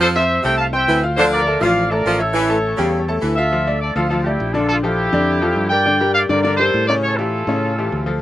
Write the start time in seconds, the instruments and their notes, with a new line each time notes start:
Already playing: fingered electric bass F2, upright piano F4 F5 F6
0.00 saxophone section F3, trumpet section A4 C5
0.16 upright piano C4 C5 C6, trumpet section C5 E5
0.43 fingered electric bass C2, saxophone section C3, upright piano A3 A4 A5, trumpet section G5
0.47 trumpet section E5
0.58 trumpet section F5 A5
0.73 upright piano C4 C5 C6, trumpet section E5 G5
0.88 fingered electric bass D2, saxophone section E3
1.03 upright piano F4 F5 F6
1.17 saxophone section D3, upright piano F3 F4 F5, trumpet section A4 C5
1.31 trumpet section A#4 D5
1.46 upright piano A3 A4 A5
1.60 fingered electric bass A1, saxophone section F3, upright piano F3 F4 F5, trumpet section D5 F5
1.91 upright piano A3 A4 A5, trumpet section A#4 D5
2.05 fingered electric bass A1, saxophone section F3
2.19 upright piano E4 E5 E6, trumpet section A4 C#5
2.34 saxophone section E3
2.49 upright piano A3 A4 A5
2.77 fingered electric bass E2, saxophone section C#3, upright piano G3 G4 G5
3.08 upright piano A3 A4 A5
3.21 fingered electric bass D2, saxophone section E3
3.36 upright piano F4 F5 F6, trumpet section A4 E5
3.52 upright piano F3 F4 F5
3.67 upright piano A3 A4 D5
3.81 trumpet section A4 D5
3.96 fingered electric bass D2, upright piano F3 F4 F5, trumpet section F4 A4
4.09 upright piano F3 F4 F5, trumpet section F4 A4
4.23 upright piano A3 A4 D5, trumpet section E4 G4
4.40 fingered electric bass A#1
4.54 upright piano D3 D4 D5, trumpet section F4 A4
4.69 trumpet section F4 A4
4.84 upright piano F3 F4 A4, trumpet section E4 G4
5.13 fingered electric bass F2, upright piano D3 D4 D5
5.41 upright piano F3 F4 A4
5.56 fingered electric bass G2
5.69 upright piano G3 G4 A#4, trumpet section D5 G5
5.86 upright piano D3 D4 D5
6.01 upright piano G3 G4 A#4
6.15 trumpet section D5 F5
6.29 fingered electric bass G2, upright piano D3 D4 D5, trumpet section A#4 D5
6.43 upright piano D3 D4 D5, trumpet section A#4 D5
6.57 upright piano G3 G4 A#4, trumpet section A4 C5
6.74 fingered electric bass A2
6.87 upright piano C#3 C#4 C#5, trumpet section A#4 D5
7.03 trumpet section A4 C#5
7.17 upright piano E3 E4 G4, trumpet section F4 A4
7.47 fingered electric bass A2, upright piano C#3 C#4 C#5
7.78 upright piano E3 E4 G4
7.92 fingered electric bass D2
8.06 upright piano F3 F4 A4